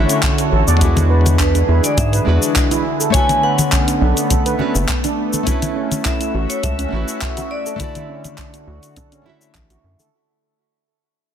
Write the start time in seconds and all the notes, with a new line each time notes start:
Already playing: D3 A3 E4 F#4 C#5 E5
0.09 C#4, closed hi-hat, shaker
0.23 kick, clap, closed hi-hat, shaker
0.38 A4, closed hi-hat, shaker
0.52 A1 A4
0.68 E2 D5, shaker
0.77 D3 E3 G#3 D4 E4 G#4, kick, closed hi-hat, muted conga
0.82 F#4 B4, shaker
0.96 closed hi-hat, high conga, shaker
1.10 B4
1.26 closed hi-hat, high conga, shaker
1.39 D4 B4, kick, clap, closed hi-hat, shaker
1.55 D4, closed hi-hat, shaker
1.68 E2 E4
1.84 D5, closed hi-hat, shaker
1.97 G#2 G#4 E5, kick, closed hi-hat, low conga, shaker
2.13 B4, closed hi-hat, shaker
2.25 E2 G#3 D4 E4 F#4 B4
2.43 shaker
2.56 kick, clap, closed hi-hat, shaker
2.71 E4, closed hi-hat, muted conga, shaker
2.85 A3 B3
3.01 A4, shaker
3.10 D3 A3 A4 C#5 G#5, kick, closed hi-hat, muted conga, shaker
3.16 F#4 B4
3.29 closed hi-hat, high conga, shaker
3.43 B4 F#5
3.59 closed hi-hat, high conga, shaker
3.72 C#4, kick, clap, closed hi-hat, shaker
3.88 C#4, closed hi-hat, shaker
4.01 B1 D4
4.17 closed hi-hat, shaker
4.30 A4, kick, closed hi-hat, muted conga, low conga, shaker
4.46 B4, closed hi-hat, shaker
4.58 A3 C#4 D4 F#4 B4, muted conga, high conga
4.75 F#1, shaker
4.89 kick, clap, closed hi-hat, shaker
5.04 D4, closed hi-hat, muted conga, shaker
5.33 A4, high conga, shaker
5.43 A3 C#4 E4 F#4 A4 E5, kick, closed hi-hat, shaker
5.48 F#4 B4, muted conga
5.62 closed hi-hat, high conga, shaker
5.76 C#4
5.92 closed hi-hat, high conga, shaker
6.05 E4 E5, kick, clap, closed hi-hat, shaker
6.21 E4, closed hi-hat, shaker
6.34 A1 F#4
6.49 C#5, closed hi-hat, shaker
6.63 C#2 A4 E5, kick, closed hi-hat, low conga, shaker
6.79 C#4, closed hi-hat, shaker
6.89 A1 A3 C#4 E4
6.94 F#4 B4
7.08 shaker
7.22 kick, clap, closed hi-hat, shaker
7.37 F#4, closed hi-hat, muted conga, shaker
7.51 D5
7.66 A4, shaker
7.76 D3 A3 E4 A4, kick, closed hi-hat
7.80 D3 F#4 D5, muted conga, shaker
7.95 closed hi-hat, high conga, shaker
8.09 C#4
8.24 closed hi-hat, high conga, shaker
8.38 D4, kick, clap, closed hi-hat, shaker
8.54 D4, closed hi-hat, shaker
8.67 D2 F#4
8.83 closed hi-hat, shaker
8.96 A4, kick, closed hi-hat, muted conga, low conga, shaker
9.12 C#4, closed hi-hat, shaker
9.22 D3 A3 E4
9.26 F#4 E5, muted conga, high conga
9.41 shaker
9.55 A1, kick, clap, closed hi-hat, shaker
9.70 F#4, closed hi-hat, muted conga, shaker
9.84 F#2
9.99 A4, high conga, shaker